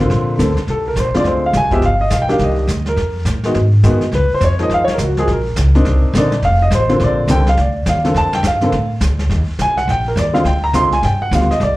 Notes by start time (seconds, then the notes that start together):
0.00 D3 A#3 C4 F4
0.10 A#1, brush sweep, kick, snare
0.38 D2 D3 A#3 C4 A4, kick, snare, hi-hat pedal
0.57 muted upright bass stroke, snare
0.67 C2 A4, brush sweep, kick, snare
0.88 A#4
0.96 A#1 C5, kick, snare, hi-hat pedal
1.14 D3 G#3 C4 F4 D5, muted upright bass stroke, snare
1.24 D2 C5, brush sweep, kick, snare
1.46 F5
1.53 C2 G#5, kick, snare, hi-hat pedal
1.71 F3 G#3 B3 G4 E5, kick, snare
1.82 G1 F5, brush sweep, kick, snare
2.01 D#5
2.10 B1 F5, kick, snare, hi-hat pedal
2.22 G5
2.28 D#3 A#3 D4 G4 F5, snare
2.39 C2 D#5, brush sweep, kick, snare
2.67 D2, kick, snare, hi-hat pedal
2.86 A#4, snare
2.96 F2, brush sweep, kick, snare
3.25 A2, kick, snare, hi-hat pedal
3.44 D#3 G#3 B3 F#4, snare
3.54 G#2, brush sweep, kick, snare
3.83 F#2 D#3 G#3 B3 F#4, kick, snare, hi-hat pedal
4.01 snare
4.12 C#2 B4, brush sweep, kick, snare
4.31 C5, muted upright bass stroke
4.41 F2 C#5, kick, snare, hi-hat pedal
4.59 F3 G#3 A#3 D#4 D#5, snare
4.70 F#2, brush sweep, kick, snare
4.74 F5
4.85 C#5, muted upright bass stroke, snare
4.94 A#4
4.98 C#2, kick, snare, hi-hat pedal
5.04 F#4
5.17 F3 G#3 A#3 F#4 G#4, snare
5.28 A#1, brush sweep, kick, snare
5.32 A#4
5.56 C#2, kick, snare, hi-hat pedal
5.75 A#3 C4 D4 D#4, snare
5.85 C2, brush sweep, kick, snare
6.04 muted upright bass stroke
6.13 A#1 D3 A#3 C4 D#4, kick, snare, hi-hat pedal
6.18 D5
6.32 snare
6.42 F1 F5, brush sweep, kick, snare
6.62 D#5
6.71 A1, kick, snare, hi-hat pedal
6.75 C5
6.89 D3 A#3 C4 F4, snare
7.00 A#1, brush sweep, kick, snare
7.04 D5
7.28 C2 D3 A#3 C4 A4 G5, kick, snare, hi-hat pedal
7.46 F5, snare
7.57 D2 D5, brush sweep, kick, snare
7.86 D#2 F5, kick, snare, hi-hat pedal
8.04 D3 A#3 C4 A4, snare
8.14 F2 A5, brush sweep, kick, snare
8.33 G5, snare
8.43 G2, kick, snare, hi-hat pedal
8.47 F5
8.61 D3 A#3 C4 A4, snare
8.72 A2, brush sweep, kick, snare
9.01 D2, kick, snare, hi-hat pedal
9.19 snare
9.29 D#2, brush sweep, kick, snare
9.48 muted upright bass stroke
9.59 C2 G#5, kick, snare, hi-hat pedal
9.77 F#5, snare
9.88 A#1 G5, brush sweep, kick, snare
10.08 A#4
10.16 D#2 D5, kick, snare, hi-hat pedal
10.33 D3 G#3 C4 F4 F5, snare
10.44 D2 G5, brush sweep, kick, snare
10.64 A#5
10.73 C2 D3 G#3 C4 F4 C6, kick, snare, hi-hat pedal
10.92 G#5, snare
11.03 G2 G5, brush sweep, kick, snare
11.22 F#5
11.31 D2 D3 G3 B3 F4 F5, kick, snare, hi-hat pedal
11.41 snare
11.50 D#5, muted upright bass stroke, snare
11.60 C2 D5, brush sweep, kick, snare